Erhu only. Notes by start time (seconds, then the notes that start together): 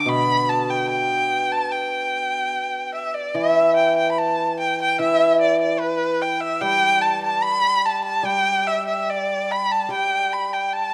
0.00 D6
0.09 B5
0.49 A5
0.70 G5
0.90 G5
1.52 A5
1.71 G5
2.95 E5
3.14 D5
3.35 E5
3.76 G5
3.97 G5
4.12 B5
4.18 A5
4.60 G5
4.82 G5
5.01 E5
5.41 D5
5.61 D5
5.80 B4
6.22 G5
6.41 E5
6.61 G5
7.02 A5
7.23 A5
7.43 B5
7.86 A5
8.05 A5
8.26 G5
8.67 E5
8.88 E5
9.09 D5
9.52 B5
9.72 A5
9.93 G5
10.33 B5
10.53 G5
10.73 A5